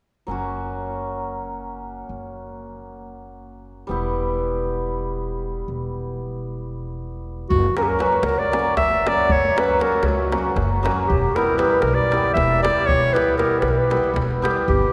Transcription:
0.27 2.05 F#1 medium
0.27 3.95 F#3 soft
0.27 3.95 A#3 soft
0.27 4.16 C#4 soft
0.31 3.93 F#4 medium
2.09 3.86 F#1 medium
3.87 5.66 E1 medium
3.87 7.55 G3 medium
3.87 7.83 B3 soft
3.87 7.46 E4 soft
3.91 7.47 G4 medium
5.68 7.45 E1 medium
7.50 7.66 F#1 loud
7.50 7.75 F#4 medium
7.50 davul low medium
7.77 7.98 F#3 medium
7.77 7.92 A#3 medium
7.77 7.92 C#4 medium
7.77 7.93 F#4 medium
7.77 7.84 A#4 medium
7.77 davul high medium
7.83 7.89 G4 medium
7.88 8.02 A#4 medium
7.99 8.51 F#3 medium
7.99 8.15 A#3 medium
7.99 8.15 C#4 medium
7.99 8.16 F#4 medium
7.99 8.24 B4 medium
7.99 davul high medium
8.12 davul high soft
8.23 8.55 C#2 medium
8.23 8.40 A#4 medium
8.23 davul high medium
8.39 8.76 D5 medium
8.52 9.05 F#3 medium
8.52 8.68 A#3 medium
8.52 8.68 C#4 medium
8.52 8.69 F#4 medium
8.52 davul high medium
8.77 9.10 F#1 medium
8.77 9.09 E5 medium
8.77 davul high medium
8.77 davul low medium
9.06 9.55 F#3 medium
9.06 9.22 A#3 medium
9.06 9.22 C#4 medium
9.06 9.22 F#4 medium
9.06 9.33 D5 medium
9.06 davul high medium
9.29 9.46 F#1 medium
9.29 9.57 C#5 loud
9.29 davul low medium
9.56 9.78 F#3 medium
9.56 9.72 A#3 medium
9.56 9.72 C#4 medium
9.56 9.73 F#4 medium
9.56 9.83 B4 medium
9.56 davul high medium
9.79 10.30 F#3 medium
9.79 9.95 A#3 medium
9.79 9.95 C#4 medium
9.79 9.95 F#4 medium
9.79 10.08 A#4 medium
9.79 davul high medium
9.92 davul high soft
10.03 10.35 C#2 medium
10.03 10.58 F#4 medium
10.03 davul high medium
10.32 10.81 F#3 medium
10.32 10.48 A#3 medium
10.32 10.48 C#4 medium
10.32 10.48 F#4 medium
10.32 davul high medium
10.56 10.88 F#1 medium
10.56 davul high medium
10.56 davul low medium
10.83 11.14 F#3 medium
10.83 11.00 A#3 medium
10.83 11.00 C#4 medium
10.83 11.00 F#4 medium
10.83 davul high medium
11.08 11.25 E1 medium
11.08 11.37 G4 medium
11.08 davul low medium
11.35 11.57 G3 medium
11.35 11.51 B3 medium
11.35 11.52 E4 medium
11.35 11.52 G4 medium
11.35 11.59 A#4 medium
11.35 davul high medium
11.57 12.10 G3 medium
11.57 11.74 B3 medium
11.57 11.74 E4 medium
11.57 11.74 G4 medium
11.57 11.83 B4 medium
11.57 davul high medium
11.71 davul high soft
11.81 12.14 B1 medium
11.81 11.96 A#4 medium
11.81 davul high medium
11.94 12.33 D5 loud
12.11 12.61 G3 medium
12.11 12.27 B3 medium
12.11 12.27 E4 medium
12.11 12.28 G4 medium
12.11 davul high medium
12.34 12.67 E1 medium
12.34 12.61 E5 medium
12.34 davul high medium
12.34 davul low medium
12.62 13.12 G3 medium
12.62 12.80 B3 soft
12.62 12.80 E4 soft
12.62 12.80 G4 medium
12.62 12.88 D5 medium
12.62 davul high medium
12.86 13.05 E1 medium
12.86 13.15 C#5 loud
12.86 davul low medium
13.13 13.36 G3 medium
13.13 13.29 B3 medium
13.13 13.30 E4 medium
13.13 13.30 G4 medium
13.13 13.37 B4 medium
13.13 davul high medium
13.37 13.89 G3 medium
13.37 13.53 B3 medium
13.37 13.53 E4 medium
13.37 13.54 G4 medium
13.37 13.59 A#4 medium
13.37 davul high medium
13.60 13.94 B1 medium
13.60 13.72 B4 medium
13.60 davul high medium
13.71 13.79 A#4 medium
13.78 14.14 B4 medium
13.90 14.41 G3 medium
13.90 14.06 B3 soft
13.90 14.07 E4 medium
13.90 14.07 G4 medium
13.90 davul high medium
14.04 davul high soft
14.13 14.45 E1 medium
14.13 davul high medium
14.13 davul low soft
14.31 davul high soft
14.42 14.72 G3 medium
14.42 14.58 B3 medium
14.42 14.59 E4 medium
14.42 14.59 G4 medium
14.42 davul high medium
14.68 14.84 G1 loud
14.68 14.93 G4 medium
14.68 davul low medium

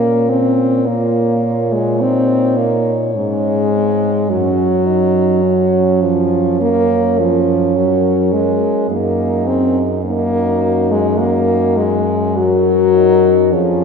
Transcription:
0.00 3.16 A#2 soft
0.00 0.31 A#3 medium
0.00 0.88 C#4 medium
0.00 0.84 A#4 medium
0.30 0.88 C4 medium
0.86 1.74 A#3 medium
0.86 2.02 F4 medium
0.86 5.13 C#5 medium
1.72 2.02 G#3 medium
2.00 2.59 C4 medium
2.00 3.14 D#4 soft
2.57 2.95 A#3 medium
3.15 4.31 G#2 soft
3.15 4.31 G#3 medium
3.15 3.75 C#4 soft
3.74 4.11 C4 soft
4.30 8.63 F#2 soft
4.30 6.03 F#3 medium
4.30 4.88 C#4 medium
4.86 5.45 D#4 medium
5.43 8.89 C#4 medium
5.43 6.62 C#5 soft
6.02 6.60 F3 medium
6.60 7.20 A#3 medium
6.60 7.75 A#4 soft
7.19 7.78 F3 medium
7.75 8.34 F#3 medium
7.75 8.91 A#4 medium
8.33 8.90 G#3 medium
8.89 13.55 F#2 medium
8.89 9.49 A#3 medium
8.89 10.02 D#4 medium
8.89 10.03 G#4 soft
9.47 9.84 C4 medium
10.03 10.93 A#3 medium
10.03 12.05 D#4 medium
10.03 11.17 F#4 medium
10.91 11.21 G#3 medium
11.19 11.79 A#3 medium
11.19 12.07 F#4 medium
11.77 12.38 G#3 medium
12.36 13.53 F#3 medium
12.36 12.97 F#4 soft
12.36 13.55 A#4 medium
12.95 13.55 D#4 medium
13.53 13.84 F2 medium
13.53 13.84 F3 medium
13.53 13.84 C#4 medium
13.53 13.84 G#4 medium

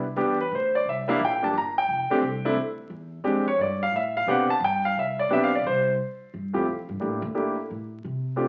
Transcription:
0.00 0.15 C2 medium
0.16 0.50 E2 medium
0.16 0.37 G3 medium
0.16 0.37 B3 medium
0.16 0.37 D4 medium
0.16 0.37 G4 medium
0.41 0.52 B4 medium
0.51 0.84 D2 medium
0.51 0.75 C5 medium
0.75 0.86 D5 medium
0.85 1.18 C2 medium
0.85 1.09 E5 medium
1.08 1.18 G3 medium
1.08 1.19 A#3 medium
1.08 1.19 D4 medium
1.08 1.19 E4 medium
1.08 1.20 F5 medium
1.20 1.53 A#1 medium
1.25 1.44 G5 medium
1.42 1.53 G3 medium
1.42 1.53 A#3 medium
1.42 1.53 D4 medium
1.42 1.53 G4 medium
1.42 1.55 A5 medium
1.53 1.87 G1 medium
1.58 1.77 A#5 medium
1.78 2.53 G5 medium
1.89 2.09 F1 medium
2.10 2.21 A3 medium
2.10 2.21 C4 medium
2.10 2.21 D4 medium
2.10 2.21 G4 medium
2.21 2.55 C2 medium
2.45 2.55 A3 medium
2.45 2.55 C4 medium
2.45 2.55 D4 medium
2.45 2.56 E4 medium
2.56 2.89 D2 medium
2.90 3.23 E2 medium
3.24 3.57 F2 medium
3.24 3.44 G#3 medium
3.24 3.44 C4 medium
3.24 3.44 D4 medium
3.24 3.44 G4 medium
3.48 3.59 C#5 medium
3.59 3.91 G2 medium
3.59 3.81 D5 medium
3.83 3.93 F5 loud
3.92 4.25 A2 medium
3.92 4.16 E5 medium
4.17 4.28 F5 medium
4.26 4.47 B2 medium
4.26 4.47 B3 medium
4.26 4.47 C4 medium
4.26 4.48 D4 medium
4.26 4.47 G4 medium
4.26 4.50 F#5 medium
4.48 4.61 A5 loud
4.48 muted upright bass stroke soft
4.60 4.94 G2 medium
4.64 4.84 G5 medium
4.85 4.96 F5 medium
4.95 5.28 C2 medium
4.95 5.19 E5 medium
5.19 5.30 D5 medium
5.29 5.62 B1 medium
5.29 5.50 B3 medium
5.29 5.50 C4 medium
5.29 5.50 D4 medium
5.29 5.50 G4 medium
5.29 5.42 E5 medium
5.44 5.53 F5 medium
5.55 5.65 D5 medium
5.64 5.97 C2 medium
5.64 5.91 C5 medium
6.34 6.54 G2 medium
6.53 6.66 E2 medium
6.53 6.64 A3 medium
6.53 6.65 C4 soft
6.53 6.65 E4 soft
6.53 6.65 F4 soft
6.53 6.65 G4 medium
6.68 6.88 F2 medium
6.89 7.00 G2 medium
7.00 7.21 A2 medium
7.00 7.20 A3 soft
7.00 7.20 A#3 soft
7.00 7.20 D4 soft
7.00 7.20 E4 soft
7.00 7.20 G4 soft
7.22 7.29 D2 medium
7.34 7.54 A3 medium
7.34 7.54 A#3 soft
7.34 7.55 D4 soft
7.34 7.55 E4 soft
7.34 7.55 G4 medium
7.70 8.01 A2 medium
8.04 8.48 C3 medium
8.36 8.48 A3 medium
8.36 8.48 C4 soft
8.36 8.48 D4 soft
8.36 8.48 F4 soft
8.36 8.48 G4 medium

